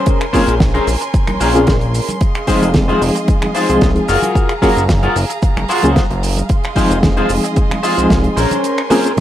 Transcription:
Already playing: C#4 G#4 A#4 C5 G#5 C6
0.06 kick, closed hi-hat, shaker
0.21 finger snap, closed hi-hat
0.33 A#3 C4 C#4 F4 G#4 A#4 C5, kick, open hi-hat, high conga, shaker
0.48 A#1, closed hi-hat, shaker
0.60 kick, snare, closed hi-hat, low conga, shaker
0.74 C#4 G#4 A#4 C5, closed hi-hat, high conga
0.87 A#1, open hi-hat, shaker
1.01 muted clean electric guitar stroke, closed hi-hat, shaker
1.13 muted clean electric guitar stroke, kick, closed hi-hat, shaker
1.27 A#1, finger snap, closed hi-hat, high conga
1.40 A#1 C#4 G#4 A#4 C5, open hi-hat, shaker
1.54 A#3 C4 C#4 F4 G#4, closed hi-hat, shaker
1.67 kick, snare, closed hi-hat, high conga, shaker
1.81 closed hi-hat
1.95 open hi-hat, shaker
2.08 muted clean electric guitar stroke, closed hi-hat, high conga, shaker
2.21 G#4 D#5 F5, kick, closed hi-hat, shaker
2.35 finger snap, closed hi-hat
2.47 F3 G#3 C4 D#4 F4 G#4 C5, kick, open hi-hat, high conga, shaker
2.62 F1, closed hi-hat, shaker
2.74 kick, snare, closed hi-hat, low conga, shaker
2.88 D#4 F4 G#4 C5, closed hi-hat, high conga
3.01 F1, open hi-hat, shaker
3.15 muted clean electric guitar stroke, closed hi-hat, shaker
3.28 muted clean electric guitar stroke, kick, closed hi-hat, shaker
3.42 finger snap, closed hi-hat, high conga
3.55 D#4 F4 G#4 C5, open hi-hat, shaker
3.69 C2 F3 G#3 C4 D#4 G#4, closed hi-hat, shaker
3.81 C2, kick, snare, closed hi-hat, high conga, shaker
3.96 closed hi-hat
4.08 F#1 F4 F#4 G#4 A#4 A#5, open hi-hat, shaker
4.22 closed hi-hat, high conga, shaker
4.35 kick, closed hi-hat, shaker
4.49 finger snap, closed hi-hat
4.62 F#3 A#3 C#4 F4 F#4 G#4 A#4, kick, open hi-hat, high conga, shaker
4.76 F#1, closed hi-hat, shaker
4.89 kick, snare, closed hi-hat, low conga, shaker
5.03 F4 F#4 G#4 A#4, closed hi-hat, high conga
5.16 F#1, open hi-hat, shaker
5.30 muted clean electric guitar stroke, closed hi-hat, shaker
5.42 muted clean electric guitar stroke, kick, closed hi-hat, shaker
5.57 F#1, finger snap, closed hi-hat, high conga
5.68 F4 F#4 G#4 C5, open hi-hat, shaker
5.83 C#2 F#3 A#3 C#4 F4 G#4, closed hi-hat, shaker
5.95 kick, snare, closed hi-hat, high conga, shaker
6.10 F#1, closed hi-hat
6.23 open hi-hat, shaker
6.37 muted clean electric guitar stroke, closed hi-hat, high conga, shaker
6.49 G#4 D#5 C6, kick, closed hi-hat, shaker
6.64 finger snap, closed hi-hat
6.75 F3 G#3 C4 D#4 F4 G#4 C5, kick, open hi-hat, high conga, shaker
6.91 F1, closed hi-hat, shaker
7.03 kick, snare, closed hi-hat, low conga, shaker
7.17 D#4 F4 G#4 C5, closed hi-hat, high conga
7.29 F1, open hi-hat, shaker
7.44 muted clean electric guitar stroke, closed hi-hat, shaker
7.56 muted clean electric guitar stroke, kick, closed hi-hat, shaker
7.71 finger snap, closed hi-hat, high conga
7.83 D#4 F4 G#4 C5, open hi-hat, shaker
7.97 C2 F3 G#3 C4 D#4 G#4, closed hi-hat, shaker
8.10 C2, kick, snare, closed hi-hat, high conga, shaker
8.24 closed hi-hat
8.37 A#1 C#4 G#4 A#4 C5 G#5, open hi-hat, shaker
8.51 closed hi-hat, high conga, shaker
8.64 closed hi-hat, shaker
8.78 finger snap, closed hi-hat
8.90 A#3 C4 C#4 F4 G#4 A#4 C5, open hi-hat, high conga, shaker
9.04 closed hi-hat, shaker
9.17 low conga

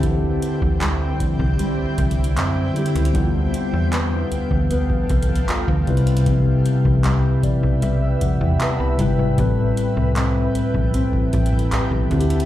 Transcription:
Already playing: D2 D3 A3 C4 E4 G4 G5
0.03 D3, kick, closed hi-hat
0.42 closed hi-hat
0.62 D2, kick
0.81 G3, clap, closed hi-hat
1.20 C2 C5, kick, closed hi-hat
1.39 C2, kick
1.59 G3, closed hi-hat
1.79 C2
1.98 C2, kick, closed hi-hat
2.11 closed hi-hat
2.24 closed hi-hat
2.37 F#2 C4, clap, closed hi-hat
2.74 D3 G3 C4 E4, closed hi-hat
2.78 G4
2.86 closed hi-hat
2.95 C#2, closed hi-hat
3.05 closed hi-hat
3.13 D2 D3 G3 B3 A4 F5, kick, closed hi-hat
3.17 E4
3.24 F4
3.54 closed hi-hat
3.73 E2
3.93 B3, clap, closed hi-hat
4.32 D2, closed hi-hat
4.51 D2, kick
4.71 B3, closed hi-hat
4.90 kick
5.09 C2, kick, closed hi-hat
5.23 closed hi-hat
5.29 kick
5.36 closed hi-hat
5.48 D2 F4, clap, closed hi-hat
5.68 D2, kick
5.86 C2 C3 G3 E4 B4 E5, closed hi-hat
5.90 B4
5.97 closed hi-hat
6.07 closed hi-hat
6.17 closed hi-hat
6.26 C3, kick, closed hi-hat
6.66 closed hi-hat
6.85 C2, kick
7.04 G3, clap, closed hi-hat
7.43 B1 D5 G5, kick, closed hi-hat
7.63 B1
7.82 B1 G3 E5, closed hi-hat
8.02 E5
8.21 E2 F#5, kick, closed hi-hat
8.41 E2 G5
8.60 B3 A5, clap, closed hi-hat
8.80 C2 B5
8.98 G1 C3 G3 E4 G5, closed hi-hat
9.02 B4
9.19 G#1
9.36 A1 A2 G3 A3 C4 A4 G5, kick, closed hi-hat
9.40 B4
9.77 closed hi-hat
9.97 C2
10.16 C4, clap, closed hi-hat
10.55 B1, closed hi-hat
10.74 B1, kick
10.94 C4, closed hi-hat
11.13 kick
11.33 A1, kick, closed hi-hat
11.46 closed hi-hat
11.53 kick
11.59 closed hi-hat
11.72 B1 G4, clap, closed hi-hat
11.91 B1, kick
12.09 D2 D3 C4 E4, closed hi-hat
12.13 F#4
12.20 G4, closed hi-hat
12.30 closed hi-hat
12.40 closed hi-hat

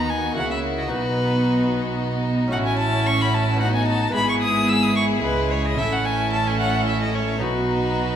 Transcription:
Already playing: D#2 D#3 B3 D#4 F#4 A#5
0.10 G#5
0.32 C#2 C#3 A#3 E4 F#4
0.36 C#3 A#3 E4 F#5
0.51 E5
0.78 D#5
0.86 B2 B3 D#4 F#4 B4
0.91 B1 B2
2.48 C#4 E4 F#4
2.52 A1 A2 C#4 E4 F#5
2.66 G#5
2.79 A5
3.07 C#6
3.21 B5
3.34 A5
3.56 B3 D#4 F#4
3.60 B3 F#5
3.75 G#5
3.88 A5
4.10 B3 E4 G#4
4.14 G#1 G#2 B5
4.29 C#6
4.42 D#6
4.69 E6
4.83 D#6
4.96 C#6
5.20 C#2 C#3 G#3 E4 G#4 B4
5.24 C#3
5.51 C#5
5.66 D#5
5.75 A1 A2 C#4 E4 A4 E5
5.79 A2
5.92 F#5
6.05 G#5
6.33 A5
6.47 G#5
6.60 F#5
6.87 E5
7.02 D#5
7.15 C#5
7.38 B1 B3 D#4 F#4
7.42 B2 B4

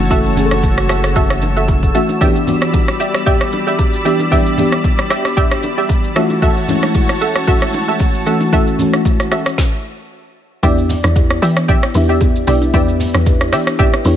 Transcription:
Already playing: F#1 E3 A3 C#4 E4 F#4 C#5 A5 E6
0.10 E3 A3 C#4 F#4 A4 E5, kick, low conga, shaker
0.25 shaker
0.36 E3 A3 C#4 G#4, low conga, shaker
0.45 A4
0.51 cross-stick, low bongo, shaker
0.63 kick, high bongo, shaker
0.78 cross-stick, shaker
0.89 F#4 A4 E5, cross-stick, high bongo, shaker
1.04 cross-stick, shaker
1.16 F#4 A4 E5, kick, low conga, shaker
1.30 cross-stick, shaker
1.42 low bongo, shaker
1.56 F#4 A4 E5, high bongo, shaker
1.68 kick, high bongo, shaker
1.83 kick, shaker
1.94 E3 A3 C#4 F#4 A4 E5, low bongo, shaker
2.09 low bongo, shaker
2.21 E3 G3 B3 D4 G4 D5 E5 B5, kick, low conga, shaker
2.36 shaker
2.47 E3 B3 D4 F#4, low conga, shaker
2.62 cross-stick, low bongo, shaker
2.74 kick, high bongo, shaker
2.88 cross-stick, shaker
3.00 G4 D5 E5, high bongo, shaker
3.14 cross-stick, shaker
3.26 G4 D5 E5, kick, low conga, shaker
3.41 cross-stick, shaker
3.52 low bongo, shaker
3.67 G4 D5 E5, high bongo, shaker
3.79 kick, high bongo, shaker
3.94 shaker
4.05 E3 B3 D4 G4 D5 E5, low bongo, shaker
4.19 low bongo, shaker
4.31 E3 B3 D4 G4 D5 E5, kick, low conga, shaker
4.46 shaker
4.58 E3 B3 D4 G4, low conga, shaker
4.72 cross-stick, low bongo, shaker
4.84 kick, high bongo, shaker
4.99 cross-stick, shaker
5.10 G4 D5 E5, cross-stick, high bongo, shaker
5.25 cross-stick, shaker
5.37 G4 D5 E5, kick, low conga, shaker
5.51 cross-stick, shaker
5.63 low bongo, shaker
5.78 G4 D5 E5, high bongo, shaker
5.89 kick, high bongo, shaker
6.04 shaker
6.15 E3 A3 C#4 F4 F#4 A4 C#5 E5 A5, cross-stick, low bongo, shaker
6.24 F#4
6.30 low bongo, shaker
6.42 F#4 A4 E5, kick, low conga, shaker
6.57 shaker
6.68 E3 G#3 C#4 E4, low conga, shaker
6.75 A3
6.83 cross-stick, low bongo, shaker
6.95 kick, high bongo, shaker
7.09 cross-stick, shaker
7.21 F#4 A4 E5, high bongo, shaker
7.36 cross-stick, shaker
7.47 F#4 A4 E5, kick, low conga, shaker
7.62 cross-stick, shaker
7.73 low bongo, shaker
7.88 F#4 A4 E5, high bongo, shaker
8.00 kick, high bongo, shaker
8.15 shaker
8.26 E3 A3 C#4 F#4 A4 E5, low bongo, shaker
8.41 low bongo, shaker
8.52 E3 A3 C#4 F#4 A4 E5, kick, low conga, shaker
8.68 shaker
8.79 E3 A3 C#4 F#4, low conga, shaker
8.93 cross-stick, low bongo, shaker
9.05 kick, high bongo, shaker
9.20 cross-stick, shaker
9.31 F#4 A4 E5, cross-stick, high bongo, shaker
9.46 cross-stick, shaker
9.58 kick, snare
10.63 E2 B3 D4 E4 G4 D5 E5, kick, low conga, shaker
10.78 shaker
10.89 open hi-hat, low conga, shaker
11.04 E2, cross-stick, low bongo, shaker
11.16 kick, high bongo, shaker
11.30 cross-stick, shaker
11.42 E3 G4 D5 E5, open hi-hat, high bongo, shaker
11.57 cross-stick, shaker
11.68 G4 D5 E5, kick, low conga, shaker
11.83 cross-stick, shaker
11.94 E2 B3 D4 E4 G4 E5, open hi-hat, low bongo, shaker
12.09 G4 D5 E5, high bongo, shaker
12.21 kick, high bongo, shaker
12.36 shaker
12.47 B1 B3 D4 E4 G4 D5 E5, open hi-hat, shaker
12.62 low bongo, shaker
12.73 E2 B3 D4 E4 G4 B4 D5 E5, kick, low conga, shaker
12.89 shaker
13.00 open hi-hat, low conga, shaker
13.14 E2, cross-stick, low bongo, shaker
13.26 kick, high bongo, shaker
13.41 cross-stick, shaker
13.53 E3 G4 D5 E5, cross-stick, open hi-hat, high bongo, shaker
13.67 cross-stick, shaker
13.79 G4 D5 E5, kick, low conga, shaker
13.94 cross-stick, shaker
14.05 E2 B3 D4 E4 G4 C#5, open hi-hat, low bongo, shaker

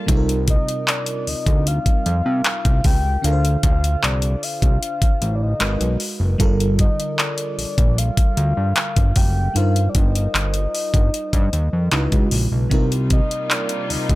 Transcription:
Already playing: F4 A4
0.06 C2 C3 G3 C4 D#4 F4 A4, kick, closed hi-hat
0.17 A#4
0.29 closed hi-hat
0.48 D#5, kick, closed hi-hat
0.68 closed hi-hat
0.88 D5, clap, closed hi-hat
1.06 closed hi-hat
1.27 D2 D#5, open hi-hat
1.47 D2, kick, closed hi-hat
1.67 F5, closed hi-hat
1.86 kick, closed hi-hat
2.06 F2, closed hi-hat
2.26 C3
2.44 clap, closed hi-hat
2.65 C2, kick, closed hi-hat
2.84 C#2 G5, kick, open hi-hat
3.22 D2 D3 D4 F4 A4 A#4 F5, closed hi-hat
3.32 C5
3.45 closed hi-hat
3.63 D2 F5, kick, closed hi-hat
3.84 closed hi-hat
4.03 C2 D5, clap, closed hi-hat
4.22 closed hi-hat
4.43 F5, open hi-hat
4.62 C2, kick, closed hi-hat
4.83 closed hi-hat
5.02 kick, closed hi-hat
5.21 A1, closed hi-hat
5.35 D5
5.42 D#5
5.60 G#1 G#3 D#4 F#4 A#4 B4, clap, closed hi-hat
5.81 B1, closed hi-hat
6.00 open hi-hat
6.20 F#1
6.38 G1 D3 G3 F4 A4 A#4, kick, closed hi-hat
6.60 closed hi-hat
6.79 D#5, kick, closed hi-hat
7.00 closed hi-hat
7.19 D5, clap, closed hi-hat
7.38 closed hi-hat
7.58 A#1, open hi-hat
7.78 A#1, kick, closed hi-hat
7.98 F5, closed hi-hat
8.17 kick, closed hi-hat
8.37 D2, closed hi-hat
8.57 G2
8.76 clap, closed hi-hat
8.96 G1, kick, closed hi-hat
9.16 F#1 G5, kick, open hi-hat
9.54 G1 G3 D#4 F4 A#4 C5 F5, closed hi-hat
9.76 closed hi-hat
9.89 D5
9.95 G1 D#5, kick, closed hi-hat
10.15 closed hi-hat
10.35 G1, clap, closed hi-hat
10.54 closed hi-hat
10.75 open hi-hat
10.94 G1, kick, closed hi-hat
11.14 closed hi-hat
11.33 G2, kick, closed hi-hat
11.53 D#2, closed hi-hat
11.73 F2
11.91 C#2 C#3 G#3 D#4 E4 F#4 B4, clap, closed hi-hat
12.12 C#2, kick, closed hi-hat
12.31 A#1, open hi-hat
12.52 B1
12.70 C2 C3 G3 A#3 C4 D#4 F4 A#4, kick, closed hi-hat
12.92 closed hi-hat
13.10 D#5, kick, closed hi-hat
13.31 closed hi-hat
13.51 D5, clap, closed hi-hat
13.69 closed hi-hat
13.90 D2 D#5, open hi-hat
14.09 D2, kick, closed hi-hat

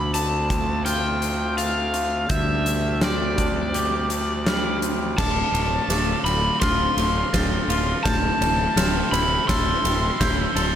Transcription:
Already playing: D2 D3 A3 C4 F4 B5 D6
0.13 A3 A5 D6, closed hi-hat
0.50 C4, kick, closed hi-hat
0.85 F4 G5 F6, closed hi-hat
1.22 C4, closed hi-hat
1.58 D3 F5 A6, closed hi-hat
1.93 A3, closed hi-hat
2.29 D2 G2 G3 C4 G4 E5 G6, kick, closed hi-hat
2.66 closed hi-hat
3.01 C4 D5 F6, snare, closed hi-hat
3.38 D4, kick, closed hi-hat
3.74 G4 D6, closed hi-hat
4.10 D4, closed hi-hat
4.46 G3 F6, snare, closed hi-hat
4.82 C4, closed hi-hat
5.16 D1 D2 D3 A3 C4 F4 A5 D6, kick, snare, crash
5.52 D1 A2, ride
5.88 D1 A3 D6, snare, ride
6.24 D1 C4 B5, ride
6.60 D1 F4 C6 F6, kick, snare, ride
6.97 D1 A3, ride
7.33 D1 C4 A6, kick, snare, ride
7.68 D1 F4, ride
8.03 D1 A2 C3 E3 E4 A5 G6, kick, snare, ride
8.41 D1 E3, ride
8.76 D1 C4 F6, snare, ride
9.12 D1 E4 B5, ride
9.48 D1 A4 C6 E6, kick, snare, ride
9.84 D1 C4, ride
10.20 D1 E4 G6, kick, snare, ride
10.55 D1 A4, ride

